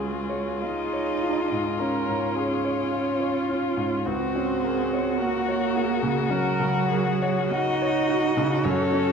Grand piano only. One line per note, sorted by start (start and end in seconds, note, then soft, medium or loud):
0.00 1.76 C#2 soft
0.00 0.17 C#4 soft
0.00 0.50 G#4 soft
0.29 0.81 C#5 soft
0.62 1.11 F5 soft
0.93 1.40 C#5 soft
1.22 1.69 F4 soft
1.52 1.97 G#2 soft
1.80 2.25 C#4 soft
2.08 2.53 G#2 soft
2.36 2.82 G#4 soft
2.65 3.10 C#5 soft
2.93 3.38 F5 soft
3.20 3.66 C#5 soft
3.49 3.95 F4 soft
3.77 4.06 G#2 soft
4.06 6.26 C#2 soft
4.35 4.81 C#4 soft
4.65 5.10 A#4 soft
4.93 5.38 C#5 soft
5.21 5.65 F#5 soft
5.49 5.92 C#5 soft
5.76 6.19 F#4 soft
6.03 6.48 C#3 soft
6.30 6.77 C#4 soft
6.60 7.09 C#3 soft
6.91 7.40 A#4 soft
7.22 7.70 C#5 soft
7.53 7.99 F#5 soft
7.82 8.26 C#5 soft
8.10 8.54 F#4 soft
8.37 8.64 C#3 soft
8.65 9.12 F#2 soft
8.93 9.12 C#4 soft